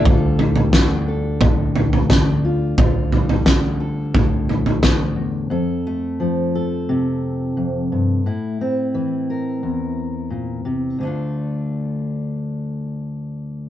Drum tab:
SD |----o-------o---|----o-------o---|----------------|----------------|
FT |o-oo----o-oo----|o-oo----o-oo----|----------------|----------------|
BD |o---o---o---o---|o---o---o---o---|----------------|----------------|

SD |----------------|
FT |----------------|
BD |----------------|